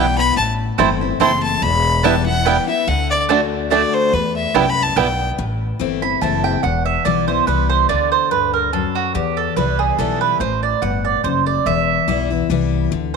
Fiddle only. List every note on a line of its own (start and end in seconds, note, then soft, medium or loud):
0.00 0.17 G5 medium
0.18 0.36 B5 loud
0.37 0.51 A5 medium
1.21 1.42 C6 loud
1.43 1.64 A5 loud
1.62 2.05 B5 loud
2.04 2.25 A5 medium
2.26 2.47 F#5 loud
2.46 2.68 G5 loud
2.68 2.89 E5 medium
2.88 3.10 F#5 loud
3.10 3.22 D5 loud
3.71 3.95 D5 medium
3.94 4.15 C5 loud
4.13 4.36 B4 medium
4.36 4.56 E5 medium
4.55 4.71 G5 medium
4.69 4.84 B5 loud
4.83 4.98 A5 loud
4.96 5.29 G5 medium